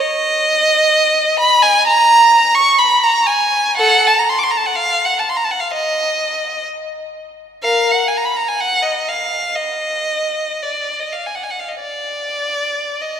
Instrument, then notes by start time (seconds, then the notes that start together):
violin
0.00 D#5
1.39 B5
1.62 G#5
1.87 A#5
2.54 C#6
2.78 B5
3.03 A#5
3.27 G#5
3.77 A4 F#5
4.07 A5
4.19 A#5
4.29 C6
4.39 D6
4.43 C6
4.50 A#5
4.57 A5
4.65 F#5
4.75 F5
5.05 F#5
5.19 A5
5.29 C6
5.36 A#5
5.44 A5
5.51 F#5
5.60 F5
5.73 D#5
7.63 A#4 F5
7.91 F#5
8.08 G#5
8.17 A#5
8.25 B5
8.36 A#5
8.48 G#5
8.60 F#5
8.82 D#5
9.08 F5
9.55 D#5
10.63 D5
11.00 D#5
11.12 F5
11.26 G#5
11.35 F#5
11.43 G#5
11.51 F#5
11.59 F5
11.69 D#5
11.80 D5
13.01 D#5